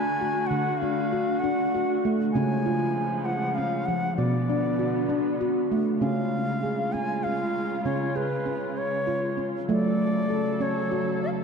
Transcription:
Already playing: D3 A3 D4 F#4 G#5
0.21 F#4
0.47 F#5
0.51 D3
0.78 F5
0.82 D4
1.13 F#4
1.39 F#5
1.44 D4
1.75 F#4
2.05 A3
2.32 C#3 F3 G#3 G#5
2.36 C#3 C#4
2.66 F4
3.25 F#5
3.55 C#4 F5
3.86 F3 F#5
4.17 B2 D3 B3 D5
4.50 D4
4.79 F#4
5.09 D4
5.41 F#4
5.72 A3
6.00 C#3 G#3 C#4 F4 F5
6.63 G#4
6.93 C#4 G#5
7.24 F4 F5
7.84 C#3 C#4 C#5
8.16 G#4 B4
8.46 C#4
8.78 C#5
9.07 F4
9.37 C#4
9.68 C#3 F#3 A3 A4 D5
10.30 A4
10.61 C#4 C#5
10.91 F#4
11.23 F5

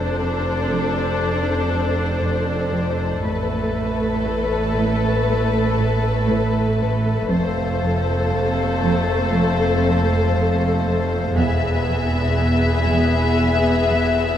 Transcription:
Already playing: F1 F2 D4 A4 C5 D5
0.19 F2
0.70 F2
1.20 F3
1.72 F2
2.22 F2
2.73 F2
3.23 A1 A2 A3 A4 B4 E5
3.75 A2
4.26 A2
4.77 A2
5.28 A3
5.79 A2
6.29 A2
6.80 A2
7.29 F1 F2 A3 A4 C5 F5
7.81 F2
8.31 F2
8.82 F2
9.33 F3
9.84 F2
10.35 F2
10.86 F2
11.36 E1 E2 B3 G#4 B4 E5
11.89 E2
12.39 E2
12.90 E2
13.41 E3
13.93 E2

